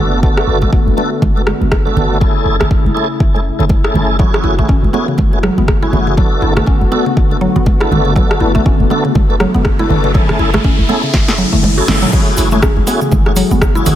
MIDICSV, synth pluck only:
0, 0, Header, 1, 2, 480
1, 0, Start_track
1, 0, Key_signature, 3, "minor"
1, 0, Tempo, 495868
1, 219, Time_signature, 4, 2, 24, 8
1, 13507, End_track
2, 0, Start_track
2, 0, Title_t, "Synth pluck"
2, 0, Program_c, 0, 84
2, 4056, Note_on_c, 0, 54, 86
2, 4134, Note_off_c, 0, 54, 0
2, 4295, Note_on_c, 0, 64, 74
2, 4431, Note_off_c, 0, 64, 0
2, 4440, Note_on_c, 0, 57, 107
2, 4534, Note_off_c, 0, 57, 0
2, 4535, Note_on_c, 0, 61, 82
2, 4613, Note_off_c, 0, 61, 0
2, 4774, Note_on_c, 0, 59, 78
2, 4903, Note_off_c, 0, 59, 0
2, 4919, Note_on_c, 0, 49, 74
2, 5013, Note_off_c, 0, 49, 0
2, 5257, Note_on_c, 0, 54, 100
2, 5385, Note_off_c, 0, 54, 0
2, 5401, Note_on_c, 0, 59, 74
2, 5489, Note_off_c, 0, 59, 0
2, 5639, Note_on_c, 0, 64, 105
2, 5733, Note_off_c, 0, 64, 0
2, 5877, Note_on_c, 0, 49, 80
2, 5973, Note_off_c, 0, 49, 0
2, 5976, Note_on_c, 0, 54, 86
2, 6054, Note_off_c, 0, 54, 0
2, 6216, Note_on_c, 0, 64, 76
2, 6352, Note_off_c, 0, 64, 0
2, 6356, Note_on_c, 0, 57, 107
2, 6451, Note_on_c, 0, 61, 83
2, 6452, Note_off_c, 0, 57, 0
2, 6531, Note_off_c, 0, 61, 0
2, 6695, Note_on_c, 0, 59, 80
2, 6824, Note_off_c, 0, 59, 0
2, 6836, Note_on_c, 0, 49, 77
2, 6932, Note_off_c, 0, 49, 0
2, 7174, Note_on_c, 0, 54, 103
2, 7304, Note_off_c, 0, 54, 0
2, 7316, Note_on_c, 0, 59, 79
2, 7407, Note_off_c, 0, 59, 0
2, 7555, Note_on_c, 0, 64, 99
2, 7651, Note_off_c, 0, 64, 0
2, 7792, Note_on_c, 0, 49, 80
2, 7890, Note_off_c, 0, 49, 0
2, 7895, Note_on_c, 0, 54, 85
2, 7973, Note_off_c, 0, 54, 0
2, 8134, Note_on_c, 0, 64, 72
2, 8271, Note_off_c, 0, 64, 0
2, 8274, Note_on_c, 0, 57, 110
2, 8371, Note_off_c, 0, 57, 0
2, 8379, Note_on_c, 0, 61, 82
2, 8455, Note_off_c, 0, 61, 0
2, 8618, Note_on_c, 0, 59, 78
2, 8745, Note_off_c, 0, 59, 0
2, 8758, Note_on_c, 0, 49, 75
2, 8853, Note_off_c, 0, 49, 0
2, 9101, Note_on_c, 0, 54, 103
2, 9227, Note_off_c, 0, 54, 0
2, 9239, Note_on_c, 0, 59, 77
2, 9329, Note_off_c, 0, 59, 0
2, 9480, Note_on_c, 0, 64, 101
2, 9574, Note_off_c, 0, 64, 0
2, 9718, Note_on_c, 0, 49, 78
2, 9813, Note_off_c, 0, 49, 0
2, 9819, Note_on_c, 0, 54, 82
2, 9895, Note_off_c, 0, 54, 0
2, 10060, Note_on_c, 0, 64, 73
2, 10194, Note_off_c, 0, 64, 0
2, 10199, Note_on_c, 0, 57, 110
2, 10294, Note_off_c, 0, 57, 0
2, 10301, Note_on_c, 0, 61, 80
2, 10376, Note_off_c, 0, 61, 0
2, 10540, Note_on_c, 0, 59, 76
2, 10666, Note_off_c, 0, 59, 0
2, 10680, Note_on_c, 0, 49, 77
2, 10774, Note_off_c, 0, 49, 0
2, 11017, Note_on_c, 0, 54, 82
2, 11094, Note_off_c, 0, 54, 0
2, 11155, Note_on_c, 0, 57, 77
2, 11211, Note_off_c, 0, 57, 0
2, 11399, Note_on_c, 0, 66, 77
2, 11494, Note_off_c, 0, 66, 0
2, 11499, Note_on_c, 0, 61, 74
2, 11633, Note_off_c, 0, 61, 0
2, 11638, Note_on_c, 0, 54, 109
2, 11726, Note_off_c, 0, 54, 0
2, 11738, Note_on_c, 0, 54, 87
2, 11815, Note_off_c, 0, 54, 0
2, 11978, Note_on_c, 0, 64, 77
2, 12112, Note_off_c, 0, 64, 0
2, 12121, Note_on_c, 0, 57, 106
2, 12215, Note_off_c, 0, 57, 0
2, 12220, Note_on_c, 0, 61, 82
2, 12296, Note_off_c, 0, 61, 0
2, 12457, Note_on_c, 0, 59, 79
2, 12585, Note_off_c, 0, 59, 0
2, 12598, Note_on_c, 0, 49, 77
2, 12693, Note_off_c, 0, 49, 0
2, 12937, Note_on_c, 0, 54, 104
2, 13065, Note_off_c, 0, 54, 0
2, 13080, Note_on_c, 0, 59, 79
2, 13169, Note_off_c, 0, 59, 0
2, 13314, Note_on_c, 0, 64, 104
2, 13411, Note_off_c, 0, 64, 0
2, 13507, End_track
0, 0, End_of_file